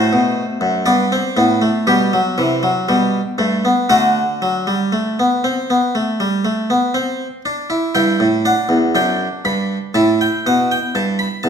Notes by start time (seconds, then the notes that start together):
Already playing: A2 A3 F#4 C5
0.13 B2
0.61 F#2
0.86 G2 B3 D5
1.12 C4
1.37 A2 B3
1.62 A3
1.87 B2 G3 G4
2.13 F#3
2.38 C3 E3
2.63 F#3
2.89 B2 G3
3.38 G2 A3
3.65 B3
3.89 D3 A3 F#4 F#5
4.42 F#3
4.67 G3
4.92 A3
5.19 B3
5.44 C4
5.70 B3
5.95 A3
6.20 G3
6.45 A3
6.70 B3
6.94 C4
7.45 D4
7.70 E4
7.95 G2 E4 G5
8.20 A2
8.45 D4 F#5
8.69 E2
8.95 F#2 D4 G5
9.45 G2 B5
9.94 A2 E4 A5
10.21 G5
10.46 B2 F#5
10.71 G5
10.95 G2 A5
11.19 B5
11.43 E2 A5